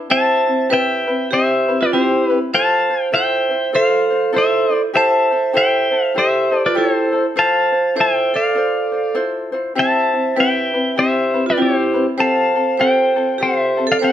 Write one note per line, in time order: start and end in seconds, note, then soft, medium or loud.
0.00 0.10 B4 medium
0.10 0.47 C4 medium
0.10 0.46 E4 medium
0.10 0.47 G4 medium
0.10 0.67 C5 medium
0.10 0.67 E5 medium
0.10 0.73 A5 medium
0.47 0.69 C4 soft
0.47 0.69 E4 soft
0.69 1.08 C4 medium
0.69 1.07 E4 medium
0.69 1.07 G4 medium
0.69 1.27 B4 medium
0.69 1.06 B4 medium
0.69 1.28 E5 medium
0.74 1.34 G5 medium
1.07 1.31 C4 soft
1.07 1.31 E4 soft
1.07 1.31 B4 medium
1.31 1.69 C4 medium
1.31 1.68 E4 medium
1.31 1.76 G4 medium
1.31 1.69 G4 medium
1.31 1.78 C5 medium
1.31 1.83 E5 medium
1.68 1.92 C4 soft
1.68 1.92 E4 soft
1.68 1.92 B4 medium
1.81 1.91 F4 medium
1.81 1.92 B4 medium
1.81 1.93 D5 medium
1.93 2.30 C4 medium
1.93 2.38 E4 medium
1.93 2.29 E4 medium
1.93 2.29 G4 medium
1.93 2.38 G4 medium
1.93 2.27 C5 medium
2.27 2.53 E4 soft
2.27 2.38 B4 medium
2.27 2.53 B4 medium
2.32 2.54 C4 soft
2.53 2.90 F4 medium
2.53 2.90 A4 medium
2.53 3.10 C5 medium
2.53 2.89 C5 medium
2.53 3.10 F5 medium
2.53 3.02 A5 medium
2.90 3.11 F4 soft
2.90 3.12 C5 medium
3.02 3.14 G5 medium
3.12 3.50 E4 medium
3.12 3.50 F4 medium
3.12 3.50 A4 medium
3.12 3.49 C5 medium
3.12 3.71 C5 medium
3.12 3.70 E5 medium
3.12 3.76 G5 loud
3.50 3.72 E4 soft
3.50 3.72 F4 soft
3.50 3.73 C5 medium
3.73 4.11 F4 medium
3.73 4.10 A4 medium
3.73 4.30 A4 medium
3.73 4.09 C5 medium
3.73 4.31 C5 medium
3.73 4.37 F5 medium
4.10 4.32 F4 soft
4.10 4.33 C5 medium
4.33 4.70 E4 medium
4.33 4.71 F4 medium
4.33 4.70 A4 medium
4.33 4.81 A4 medium
4.33 4.69 C5 medium
4.33 4.81 C5 medium
4.38 4.81 E5 loud
4.70 4.93 E4 medium
4.70 4.94 F4 soft
4.70 4.93 C5 medium
4.94 5.31 E4 medium
4.94 5.30 G4 medium
4.94 5.31 A4 medium
4.94 5.29 C5 medium
4.94 5.52 C5 medium
4.94 5.51 E5 medium
4.94 5.57 A5 medium
5.31 5.53 E4 soft
5.31 5.53 A4 medium
5.31 5.53 C5 medium
5.53 5.91 E4 medium
5.53 5.90 G4 medium
5.53 5.91 A4 medium
5.53 5.89 C5 medium
5.53 6.12 C5 medium
5.53 6.12 E5 medium
5.58 6.05 G5 medium
5.91 6.14 E4 soft
5.91 6.14 A4 soft
5.91 6.14 C5 medium
6.05 6.18 F5 medium
6.14 6.52 E4 medium
6.14 6.51 G4 medium
6.14 6.62 G4 medium
6.14 6.51 A4 medium
6.14 6.50 C5 medium
6.14 6.62 C5 medium
6.19 6.67 E5 medium
6.51 6.74 E4 soft
6.51 6.74 A4 soft
6.51 6.74 C5 medium
6.66 6.76 F4 medium
6.66 6.76 B4 medium
6.66 6.77 D5 medium
6.75 7.12 E4 medium
6.75 7.25 E4 medium
6.75 7.11 G4 medium
6.75 7.12 A4 medium
6.75 7.22 A4 medium
6.75 7.10 C5 medium
6.75 7.26 C5 medium
7.11 7.35 E4 soft
7.11 7.34 A4 medium
7.11 7.35 C5 medium
7.36 7.73 F4 medium
7.36 7.73 A4 medium
7.36 7.71 C5 medium
7.36 7.93 C5 medium
7.36 7.94 F5 medium
7.36 8.00 A5 loud
7.72 7.95 F4 soft
7.72 7.96 C5 medium
7.95 8.33 E4 medium
7.95 8.33 F4 medium
7.95 8.33 A4 medium
7.95 8.31 C5 medium
7.95 8.32 C5 medium
8.00 8.33 E5 medium
8.00 8.37 G5 medium
8.33 8.54 F4 soft
8.33 9.13 A4 medium
8.33 8.56 C5 medium
8.33 9.14 D5 medium
8.33 9.14 F5 medium
8.55 8.92 F4 medium
8.55 8.93 A4 medium
8.55 8.91 C5 medium
8.92 9.14 F4 soft
8.92 9.14 C5 medium
9.15 9.52 E4 medium
9.15 9.53 F4 medium
9.15 9.53 A4 medium
9.15 9.51 C5 medium
9.52 9.75 E4 medium
9.52 9.75 F4 medium
9.52 9.75 C5 medium
9.75 10.14 C4 medium
9.75 10.12 E4 medium
9.75 10.13 G4 medium
9.75 10.33 C5 medium
9.75 10.40 A5 medium
9.80 10.35 E5 medium
10.13 10.35 C4 soft
10.13 10.36 E4 soft
10.36 10.74 C4 medium
10.36 10.74 E4 medium
10.36 10.74 G4 medium
10.36 10.94 B4 medium
10.36 10.72 B4 medium
10.40 10.96 E5 medium
10.40 11.01 G5 medium
10.74 10.96 C4 soft
10.74 10.96 E4 soft
10.74 10.98 B4 soft
10.96 11.34 C4 medium
10.96 11.33 E4 medium
10.96 11.34 G4 medium
10.96 11.43 G4 medium
10.96 11.45 C5 medium
10.96 11.44 E5 medium
11.34 11.56 C4 soft
11.34 11.57 E4 soft
11.34 11.58 B4 medium
11.46 11.57 F4 medium
11.46 11.60 D5 medium
11.51 11.60 B4 medium
11.57 11.95 C4 medium
11.57 12.03 E4 medium
11.57 11.94 E4 medium
11.57 11.95 G4 medium
11.62 12.06 G4 medium
11.62 12.06 C5 medium
11.94 12.17 C4 soft
11.94 12.19 E4 medium
11.94 12.18 B4 medium
12.17 12.56 C4 medium
12.17 12.55 F4 medium
12.17 12.55 G4 medium
12.17 12.54 A4 medium
12.17 12.75 C5 medium
12.17 12.82 A5 medium
12.21 12.77 F5 medium
12.56 12.78 C4 soft
12.56 12.78 F4 soft
12.56 12.79 A4 medium
12.77 13.16 C4 medium
12.77 13.16 F4 medium
12.77 13.16 G4 medium
12.77 13.15 A4 medium
12.77 13.35 C5 medium
12.77 13.42 G5 medium
12.82 13.37 C5 medium
13.16 13.39 C4 soft
13.16 13.39 F4 soft
13.16 13.40 A4 medium
13.38 13.77 C4 medium
13.38 13.77 F4 medium
13.38 13.84 G4 medium
13.38 13.77 G4 medium
13.38 13.76 A4 medium
13.43 13.87 C5 medium
13.43 13.91 E5 medium
13.77 14.00 C4 soft
13.77 14.01 F4 medium
13.77 14.00 A4 soft
13.87 13.93 A4 medium
13.92 13.97 D5 medium
13.92 13.96 F5 medium
13.99 14.12 C4 medium
13.99 14.12 F4 medium
13.99 14.12 G4 medium
13.99 14.12 A4 medium
13.99 14.12 C5 medium
14.04 14.12 C5 medium
14.04 14.12 G5 medium